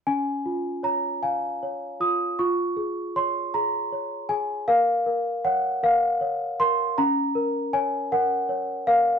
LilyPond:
\new Staff \with { instrumentName = "Celesta" } { \time 6/8 \key des \major \tempo 4. = 52 << { aes''4 bes''8 aes''4 ees'''8 | des'''4 c'''8 bes''4 aes''8 | f''4 ges''8 f''4 c'''8 | bes''4 aes''8 ges''4 f''8 | } \\ { des'8 f'8 des''8 f''8 des''8 f'8 | f'8 aes'8 des''8 aes'8 des''8 aes'8 | bes'8 bes'8 des''8 bes'8 des''8 bes'8 | des'8 bes'8 des''8 bes'8 des''8 bes'8 | } >> }